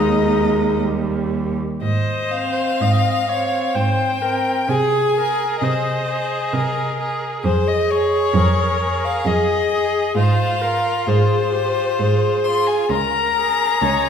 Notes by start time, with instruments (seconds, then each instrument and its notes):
Already playing: cello D#2, viola G#3, violin D#4 D#5
0.82 viola G3
1.82 cello G#2, viola C5, violin D#5
2.31 violin C4 F5
2.80 cello G#2, viola D#5
3.29 violin C4, viola C#5
3.75 cello G#2, viola C5, violin G5
4.22 violin C4, viola A#4
4.69 cello C3, viola G#4, violin G#4 G#5
5.16 violin G#4, viola A#4
5.61 cello C3, viola C5, violin D#5
6.09 violin G#4
6.53 cello C3, viola A#4
7.00 violin G#4
7.44 cello F2, viola G#4, violin C5
7.68 violin D#5
7.90 violin G#4 C#5
8.34 cello F2, viola A#4
8.80 violin G#4
9.05 violin F5
9.25 cello F2, viola G#4, violin D#5
9.71 violin G#4
10.15 cello G#2, violin F4 F5, viola C5
10.61 violin F4, viola A#4
11.07 cello G#2, viola G#4, violin C5
11.52 violin F4, viola G4
11.99 cello G#2, viola G#4
12.44 violin F4 C6
12.67 violin G#5
12.90 cello C#2, viola A#4, violin A#5
13.36 violin G#4
13.82 cello C#2, viola C#5